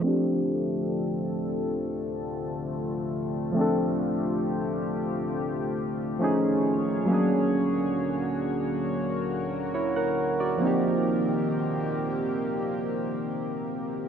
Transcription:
0.00 6.17 D3 medium
0.00 3.50 F3 medium
0.00 3.51 A3 medium
0.00 7.05 A3 medium
0.00 6.16 C4 medium
0.00 3.52 C4 medium
0.00 7.05 F4 medium
0.00 3.52 A4 medium
0.06 3.53 D4 medium
0.06 3.54 G4 medium
3.52 6.15 F3 medium
3.52 6.16 A3 medium
3.56 6.17 C4 medium
3.56 6.18 D4 medium
3.56 6.18 G4 medium
3.61 6.19 A4 medium
6.19 7.08 D#3 medium
6.19 7.08 F3 medium
6.19 7.09 A3 medium
6.19 7.08 C#4 medium
6.19 7.10 D#4 medium
6.19 8.83 G#4 medium
6.19 10.58 C#5 medium
6.24 7.11 G#4 medium
7.05 10.56 F#3 medium
7.05 10.57 A#3 medium
7.10 10.59 D3 medium
7.10 10.59 A#3 medium
7.10 10.58 C#4 medium
7.10 10.59 D4 medium
7.10 10.59 F#4 medium
7.14 9.72 G#4 medium
8.87 14.08 A#4 medium
9.74 9.95 E4 medium
9.74 9.95 C#5 medium
9.96 10.38 A#4 medium
9.96 10.38 F#5 medium
10.40 10.82 F#4 soft
10.40 10.82 D5 medium
10.58 14.08 F3 medium
10.58 14.08 A#3 medium
10.62 14.08 D#3 medium
10.62 14.08 A#3 medium
10.62 14.08 C4 medium
10.62 14.08 D#4 medium
10.62 14.08 G4 medium
10.67 14.08 G4 medium

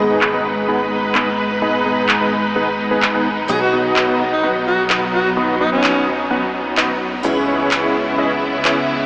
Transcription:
0.00 3.47 G#1 medium
0.00 3.46 G#2 medium
0.00 3.45 G#3 medium
0.00 3.46 G#3 medium
0.00 0.30 B3 medium
0.00 3.47 B3 medium
0.00 0.30 D#4 medium
0.00 3.47 D#4 medium
0.00 7.20 D#4 medium
0.00 0.30 G#4 medium
0.00 3.47 G#4 medium
0.00 0.30 B4 medium
0.00 3.46 B4 medium
0.00 0.30 D#5 loud
0.21 clap loud
0.33 0.47 B3 medium
0.33 0.47 D#4 medium
0.33 0.47 G#4 medium
0.33 0.47 B4 medium
0.33 0.47 D#5 medium
0.68 0.82 B3 medium
0.68 0.82 D#4 medium
0.68 0.82 G#4 medium
0.68 0.82 B4 medium
0.68 0.82 F#5 loud
1.15 1.29 B3 medium
1.15 1.29 D#4 medium
1.15 1.29 G#4 medium
1.15 1.29 B4 medium
1.15 1.29 D#5 medium
1.15 clap loud
1.62 1.82 B3 medium
1.62 1.82 D#4 medium
1.62 1.82 G#4 medium
1.62 1.82 B4 medium
1.62 1.82 D#5 medium
1.85 2.18 B3 medium
1.85 2.18 D#4 medium
1.85 2.18 G#4 medium
1.85 2.18 B4 medium
1.85 2.18 D#5 loud
2.09 clap loud
2.20 2.34 B3 medium
2.20 2.34 D#4 medium
2.20 2.34 G#4 medium
2.20 2.34 B4 medium
2.20 2.34 D#5 medium
2.56 2.69 B3 medium
2.56 2.69 D#4 medium
2.56 2.69 G#4 medium
2.56 2.69 B4 medium
2.56 2.69 F#5 medium
2.91 3.05 B3 medium
2.91 3.05 D#4 medium
2.91 3.05 G#4 medium
2.91 3.05 B4 medium
2.91 3.05 G#5 medium
3.02 clap loud
3.14 3.28 B3 medium
3.14 3.28 D#4 medium
3.14 3.28 G#4 medium
3.14 3.28 B4 medium
3.14 3.28 F#5 loud
3.48 7.22 B1 medium
3.48 7.21 B2 medium
3.48 7.21 F#3 medium
3.48 7.22 B3 medium
3.48 3.69 B3 medium
3.48 7.21 B3 medium
3.48 3.69 D#4 medium
3.48 7.22 D#4 medium
3.48 3.69 F#4 medium
3.48 7.22 F#4 medium
3.48 3.59 G#4 medium
3.48 3.69 B4 medium
3.48 3.69 D#5 medium
3.61 3.78 F#4 medium
3.73 4.05 B3 medium
3.73 4.05 D#4 medium
3.73 4.05 F#4 medium
3.73 4.05 B4 medium
3.73 4.05 D#5 loud
3.96 clap loud
4.08 4.22 B3 medium
4.08 4.22 D#4 medium
4.08 4.22 F#4 medium
4.08 4.22 B4 medium
4.08 4.22 D#5 medium
4.32 4.48 D#4 medium
4.43 4.57 B3 medium
4.43 4.57 D#4 medium
4.43 4.57 F#4 medium
4.43 4.57 B4 medium
4.43 4.57 F#5 loud
4.67 4.83 F#4 medium
4.90 5.04 B3 medium
4.90 5.04 D#4 medium
4.90 5.04 F#4 medium
4.90 5.04 B4 medium
4.90 5.04 D#5 medium
4.90 clap loud
5.13 5.30 F#4 medium
5.37 5.57 B3 medium
5.37 5.57 D#4 medium
5.37 5.57 F#4 medium
5.37 5.57 B4 medium
5.37 5.57 D#5 medium
5.60 5.93 B3 medium
5.60 5.70 D#4 medium
5.60 5.93 D#4 medium
5.60 5.93 F#4 medium
5.60 5.93 B4 medium
5.60 5.93 D#5 loud
5.72 6.07 C#4 medium
5.84 clap loud
5.96 6.09 B3 medium
5.96 6.09 D#4 medium
5.96 6.09 F#4 medium
5.96 6.09 B4 medium
5.96 6.09 D#5 medium
6.31 6.44 B3 medium
6.31 6.44 D#4 medium
6.31 6.44 F#4 medium
6.31 6.44 B4 medium
6.31 6.44 F#5 loud
6.77 6.91 B3 medium
6.77 6.91 D#4 medium
6.77 6.91 F#4 medium
6.77 6.91 B4 medium
6.77 6.91 D#5 medium
6.77 clap loud
7.23 9.06 C#2 medium
7.23 9.06 C#3 medium
7.23 9.06 G#3 medium
7.23 9.06 B3 medium
7.23 7.44 C#4 medium
7.23 9.06 C#4 medium
7.23 7.44 E4 medium
7.23 9.06 E4 medium
7.23 7.44 G#4 medium
7.23 7.44 B4 medium
7.23 7.44 C#5 medium
7.48 7.80 C#4 medium
7.48 7.80 E4 medium
7.48 7.80 G#4 medium
7.48 7.80 B4 medium
7.48 7.80 C#5 loud
7.71 clap loud
7.83 7.97 C#4 medium
7.83 7.97 E4 medium
7.83 7.97 G#4 medium
7.83 7.97 B4 medium
7.83 7.97 C#5 medium
8.18 8.32 C#4 medium
8.18 8.32 E4 medium
8.18 8.32 G#4 medium
8.18 8.32 B4 medium
8.18 8.32 D#5 loud
8.65 8.79 C#4 medium
8.65 8.79 E4 medium
8.65 8.79 G#4 medium
8.65 8.79 B4 medium
8.65 8.79 C#5 medium
8.65 clap loud

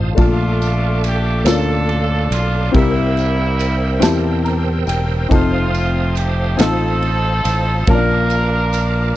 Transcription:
0.00 0.13 A1 medium
0.00 0.19 C4 medium
0.00 0.19 D#4 medium
0.00 0.17 F4 medium
0.00 0.18 A4 medium
0.00 0.13 C5 medium
0.00 2.71 F5 medium
0.00 2.71 A5 medium
0.00 0.14 D#6 medium
0.15 1.42 A#1 loud
0.15 1.41 A#2 medium
0.15 1.28 A3 medium
0.15 1.43 A3 medium
0.15 1.29 D4 medium
0.15 1.43 D4 medium
0.15 1.29 F4 medium
0.15 2.72 A4 medium
0.15 1.30 A4 medium
0.15 2.72 D6 medium
0.15 kick loud
0.15 ride medium
0.19 1.00 F4 medium
0.62 ride soft
0.62 tambourine medium
1.04 1.44 G4 medium
1.04 ride medium
1.04 tambourine soft
1.44 2.27 D2 medium
1.44 2.57 A#3 medium
1.44 1.52 C#4 medium
1.44 2.58 F4 medium
1.44 2.32 A4 medium
1.44 2.59 A4 medium
1.44 snare loud
1.44 ride medium
1.44 tambourine medium
1.49 2.72 D4 medium
1.49 2.61 D4 medium
1.49 2.31 F4 medium
1.89 ride soft
2.31 2.70 B1 medium
2.31 2.72 F4 medium
2.31 ride medium
2.31 tambourine medium
2.72 3.98 C2 loud
2.72 3.98 C3 medium
2.72 3.85 C4 medium
2.72 3.86 E4 medium
2.72 4.46 E4 medium
2.72 3.86 G4 medium
2.72 5.28 A#4 medium
2.72 3.87 A#4 medium
2.72 7.83 C5 medium
2.72 5.29 G5 medium
2.72 5.28 E6 medium
2.72 kick loud
2.72 ride medium
2.77 4.43 G3 medium
2.77 4.43 A#3 medium
3.17 ride soft
3.17 tambourine medium
3.59 ride medium
3.59 tambourine soft
4.00 4.84 E2 medium
4.00 5.13 C4 medium
4.00 5.14 E4 medium
4.00 5.14 G4 medium
4.00 5.15 A5 medium
4.00 snare loud
4.00 ride medium
4.00 tambourine loud
4.45 4.85 A#5 medium
4.45 ride soft
4.87 5.27 E1 medium
4.87 5.28 G5 medium
4.87 ride medium
4.87 tambourine medium
5.29 6.55 F1 loud
5.29 6.42 C4 medium
5.29 6.42 D#4 medium
5.29 6.43 F4 medium
5.29 6.43 A4 medium
5.29 9.17 F5 medium
5.29 9.17 A5 medium
5.29 7.85 D#6 medium
5.29 kick loud
5.29 ride medium
5.34 6.57 A3 medium
5.34 6.57 C4 medium
5.34 6.14 F4 medium
5.74 ride soft
5.74 tambourine medium
6.15 6.60 G4 medium
6.15 ride medium
6.15 tambourine soft
6.57 7.41 A1 medium
6.57 7.70 C4 medium
6.57 7.84 C4 medium
6.57 7.71 D#4 medium
6.57 7.84 D#4 medium
6.57 7.71 F4 medium
6.57 7.87 A4 loud
6.57 7.72 A4 medium
6.57 snare loud
6.57 ride medium
6.57 tambourine medium
7.02 ride soft
7.45 7.84 A1 medium
7.45 ride medium
7.45 tambourine medium
7.87 9.12 A#1 loud
7.87 9.12 A#2 medium
7.87 8.99 A#3 medium
7.87 7.94 C#4 medium
7.87 9.00 F4 medium
7.87 9.17 F4 medium
7.87 9.17 A#4 medium
7.87 9.17 A#4 loud
7.87 9.01 A5 medium
7.87 9.17 D6 medium
7.87 kick loud
7.87 ride medium
7.91 9.17 D4 medium
7.91 9.03 D4 medium
8.30 ride soft
8.30 tambourine medium
8.73 ride soft
8.73 tambourine medium

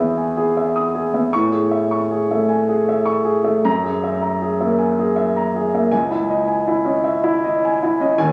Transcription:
0.00 1.27 E2 medium
0.00 0.26 B3 soft
0.00 0.37 G#4 soft
0.00 0.57 E5 soft
0.00 0.76 D#6 medium
0.17 0.47 G#5 soft
0.37 0.67 G#4 soft
0.57 0.86 E5 soft
0.76 1.05 D#6 soft
0.95 1.24 G#4 soft
1.14 1.31 B3 soft
1.14 1.32 E5 soft
1.33 3.64 A2 medium
1.33 1.62 C#6 medium
1.52 1.81 G#4 soft
1.71 2.01 E5 soft
1.91 2.21 C#6 soft
2.11 2.41 G#4 soft
2.31 2.61 A3 soft
2.31 2.61 E5 soft
2.49 2.80 G#5 soft
2.68 3.00 G#4 soft
2.89 3.20 E5 soft
3.05 3.38 C#6 soft
3.24 3.57 G#4 soft
3.44 3.65 A3 soft
3.44 3.65 E5 soft
3.65 5.87 F#2 medium
3.65 3.96 A#5 medium
3.84 4.15 G#4 soft
4.04 4.35 E5 soft
4.21 4.53 A#5 soft
4.42 4.73 G#4 soft
4.61 4.92 A#3 soft
4.61 4.91 E5 soft
4.79 5.10 G#5 soft
4.99 5.29 G#4 soft
5.16 5.47 E5 soft
5.36 5.66 A#5 soft
5.56 5.84 G#4 soft
5.74 5.92 A#3 soft
5.74 5.92 E5 soft
5.91 8.13 C#2 soft
5.91 6.20 G#5 medium
6.11 6.40 E4 soft
6.30 6.59 D#5 soft
6.48 6.78 G#5 soft
6.67 6.97 E4 soft
6.85 7.15 C#4 soft
6.85 7.16 D#5 soft
7.04 7.35 E5 soft
7.24 7.54 E4 medium
7.44 7.73 D#5 soft
7.65 7.93 G#5 medium
7.83 8.11 E4 soft
8.00 8.17 C#4 soft
8.00 8.18 D#5 soft
8.18 8.32 D#2 medium
8.18 8.32 G#5 medium

